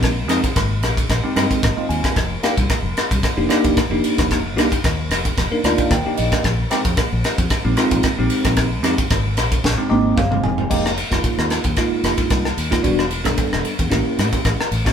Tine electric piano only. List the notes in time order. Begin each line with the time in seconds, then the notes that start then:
Already playing: G#3 C4 D#4 G4
0.28 G#3 C4 D#4 G#4
0.42 D#4
1.23 G#3 C4 D#4 G4
1.36 G#3 C4 D#4 A#4
1.63 D#5
1.77 G#3 C4 D#4 F4
1.89 G#5
2.43 A#3 D4 D#4 G4
2.58 F4
3.37 A#3 D4 D#4 G4
3.49 A#3 D4 D#4 G4
3.91 A#3 D4 D#4 G4
4.57 A#3 D4 D#4 G4
4.71 D#4 G4
5.51 A#3 D4 D#4 A#4
5.65 A#3 D4 D#4 F4
5.92 G5
6.06 A#3 D4 D#4 G4
6.18 D#5
6.71 G#3 C4 D#4 G4
6.85 D#4 G#4
7.65 G#3 C4 D#4 G4
7.77 G#3 C4 D#4 F4
8.18 G#3 C4 D#4 G4
8.83 G#3 C4 D#4 G4
9.78 G#3 C4 D#4 G4
9.89 G#3 C4 D#4 G4 D#5
10.17 F5
10.30 G#3 C4 D#4 G4
10.44 G#5
10.70 G#3 A#3 D#4 G4
10.96 D#4 G4
11.11 G#3 A#3 D#4 F4
11.77 G#3 A#3 D#4 F4
12.71 G#3 A#3 D#4 F4
12.83 G3 B3 D4 F#4
13.11 D4 E4
13.24 G3 B3 D4 A4
13.90 A#3 C#4 E4 G4
14.85 A#3 C#4 E4 F#4